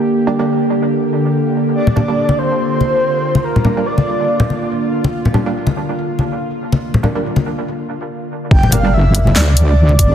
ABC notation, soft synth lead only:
X:1
M:4/4
L:1/8
Q:"Swing 16ths" 1/4=142
K:Gm
V:1 name="Soft synth lead"
z8 | d3 c4- c | B2 d4 z2 | z8 |
z8 | g f =e2 d3 d |]